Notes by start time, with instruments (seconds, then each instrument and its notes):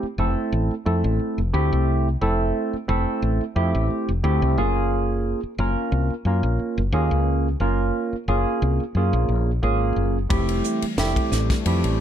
0.03 muted fretless electric bass stroke
0.18 fretless electric bass F1, tine electric piano A3 C4 E4 A4
0.52 fretless electric bass A1
0.71 muted fretless electric bass stroke
0.85 fretless electric bass F2, tine electric piano A3 C4 E4 A4
1.04 fretless electric bass A1
1.19 muted fretless electric bass stroke
1.38 fretless electric bass F1
1.53 fretless electric bass D2, tine electric piano A3 C4 E4 G4
1.73 fretless electric bass C2
2.21 fretless electric bass F1, tine electric piano A3 C4 E4 A4
2.73 muted fretless electric bass stroke
2.88 fretless electric bass F1, tine electric piano A3 C4 E4 A4
3.22 fretless electric bass A1
3.41 muted fretless electric bass stroke
3.56 fretless electric bass F2, tine electric piano A3 C4 E4 G4
3.75 fretless electric bass A1
3.90 muted fretless electric bass stroke
4.09 fretless electric bass F1
4.23 fretless electric bass D2, tine electric piano A3 C4 E4 G4
4.42 fretless electric bass C2
4.58 fretless electric bass F#1, tine electric piano A#3 C#4 F4 G#4
5.43 muted fretless electric bass stroke
5.58 fretless electric bass F#1, tine electric piano A#3 C#4 F4 A#4
5.92 fretless electric bass C2
6.10 muted fretless electric bass stroke
6.25 fretless electric bass F#2, tine electric piano A#3 C#4 F4 A#4
6.43 fretless electric bass A#1
6.59 muted fretless electric bass stroke
6.78 fretless electric bass F#1
6.92 fretless electric bass D#2, tine electric piano A#3 C#4 F4 G#4
7.11 fretless electric bass C#2
7.60 fretless electric bass F#1, tine electric piano A#3 C#4 F4 A#4
8.13 muted fretless electric bass stroke
8.28 fretless electric bass F#1, tine electric piano A#3 C#4 F4 G#4
8.62 fretless electric bass C2
8.80 muted fretless electric bass stroke
8.95 fretless electric bass F#2, tine electric piano A#3 C#4 F4 G#4
9.13 fretless electric bass A#1
9.29 fretless electric bass A#1
9.63 fretless electric bass G#1, tine electric piano A#3 C#4 F4 G#4
9.96 fretless electric bass F#1
10.29 fretless electric bass F1, analog synth pad E3 G3 A3, tine electric piano A3 C4 E4 G4, kick, ride
10.49 ride
10.64 hi-hat pedal
10.82 muted fretless electric bass stroke, ride
10.98 fretless electric bass F1, tine electric piano A3 C4 E4 G4, snare, ride
11.16 kick, ride
11.32 fretless electric bass A1, snare, hi-hat pedal
11.50 kick, snare, ride
11.66 fretless electric bass F2, tine electric piano A3 C4 E4 G4, ride
11.84 fretless electric bass A1, ride